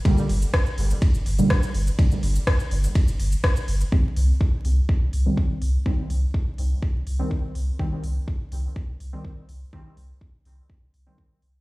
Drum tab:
RD |x---x---x---x---|x---x---x---x---|----------------|----------------|
HH |--o---o---o---o-|--o---o---o---o-|--o---o---o---o-|--o---o---o---o-|
SH |-x-x-x-x-x-x-x-x|-x-x-x-x-x-x-x-x|----------------|----------------|
SD |----r-------r---|----r-------r---|----------------|----------------|
BD |o---o---o---o---|o---o---o---o---|o---o---o---o---|o---o---o---o---|

RD |----------------|----------------|
HH |--o---o---o---o-|--o---o---o---o-|
SH |----------------|----------------|
SD |----------------|----------------|
BD |o---o---o---o---|o---o---o---o---|